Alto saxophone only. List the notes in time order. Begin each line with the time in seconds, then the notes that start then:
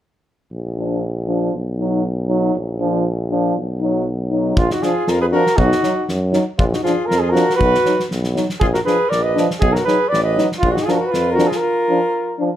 4.56 D4
4.70 D#4
4.81 F4
5.06 F4
5.21 G#4
5.32 F#4
5.57 D#4
6.59 D4
6.73 D#4
6.83 F4
7.07 F4
7.20 F4
7.32 F#4
7.57 F#4
8.61 F4
8.74 F#4
8.86 G#4
9.09 A#4
9.22 B4
9.60 D#4
9.74 F#4
9.86 G#4
10.09 B4
10.24 B4
10.62 D4
10.75 D#4
10.86 F4
10.92 F#4
11.00 F#4
11.11 F4
11.35 F#4
11.48 F4
11.60 F4